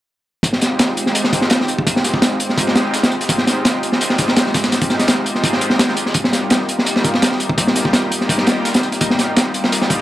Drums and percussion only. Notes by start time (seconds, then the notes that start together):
0.43 kick, closed hi-hat, tambourine
0.53 snare
0.61 snare, closed hi-hat, tambourine
0.79 snare, closed hi-hat, tambourine
0.97 closed hi-hat, tambourine
1.06 snare
1.15 closed hi-hat, tambourine
1.24 snare
1.33 kick, snare, closed hi-hat, tambourine
1.41 snare
1.50 snare, closed hi-hat, tambourine
1.60 snare
1.68 closed hi-hat, tambourine
1.79 kick
1.87 kick, closed hi-hat, tambourine
1.96 snare
2.04 snare, closed hi-hat, tambourine
2.14 kick, snare
2.22 snare, closed hi-hat, tambourine
2.40 closed hi-hat, tambourine
2.49 snare
2.58 kick, closed hi-hat, tambourine
2.67 snare
2.75 snare, closed hi-hat, tambourine
2.94 snare, closed hi-hat, tambourine
3.03 snare, closed hi-hat
3.12 tambourine
3.21 snare, closed hi-hat
3.29 kick, closed hi-hat, tambourine
3.38 snare
3.47 snare, closed hi-hat, tambourine
3.65 snare, closed hi-hat, tambourine
3.83 closed hi-hat, tambourine
3.92 snare
4.01 closed hi-hat, tambourine
4.10 snare
4.18 kick, snare, closed hi-hat, tambourine
4.28 snare
4.36 snare, closed hi-hat, tambourine
4.46 snare
4.54 kick, snare, closed hi-hat, tambourine
4.64 snare, tambourine
4.72 snare, closed hi-hat, tambourine
4.81 kick, closed hi-hat
4.90 snare, tambourine
4.99 snare, closed hi-hat
5.08 snare, closed hi-hat, tambourine
5.26 closed hi-hat, tambourine
5.35 snare
5.44 kick, closed hi-hat, tambourine
5.53 snare
5.61 closed hi-hat, tambourine
5.70 snare
5.79 snare, closed hi-hat, tambourine
5.88 snare
5.97 closed hi-hat, tambourine
6.06 snare
6.14 kick, closed hi-hat, tambourine
6.24 snare
6.33 snare, closed hi-hat, tambourine
6.50 snare, closed hi-hat, tambourine
6.69 closed hi-hat, tambourine
6.79 snare
6.86 closed hi-hat, tambourine
6.96 snare
7.04 kick, snare, closed hi-hat, tambourine
7.14 snare
7.22 snare, closed hi-hat, tambourine
7.32 snare
7.40 closed hi-hat, tambourine
7.50 kick
7.58 kick, closed hi-hat, tambourine
7.67 snare
7.75 snare, closed hi-hat, tambourine
7.85 kick, snare
7.93 snare, closed hi-hat, tambourine
8.12 closed hi-hat, tambourine
8.21 snare
8.29 kick, closed hi-hat, tambourine
8.38 snare
8.47 snare, closed hi-hat, tambourine
8.65 snare, closed hi-hat, tambourine
8.74 snare, closed hi-hat
8.83 tambourine
8.92 snare, closed hi-hat
9.01 kick, closed hi-hat, tambourine
9.10 snare
9.19 snare, closed hi-hat, tambourine
9.37 snare, closed hi-hat, tambourine
9.54 closed hi-hat, tambourine
9.64 snare
9.72 snare, closed hi-hat, tambourine
9.81 snare
9.90 kick, snare, closed hi-hat, tambourine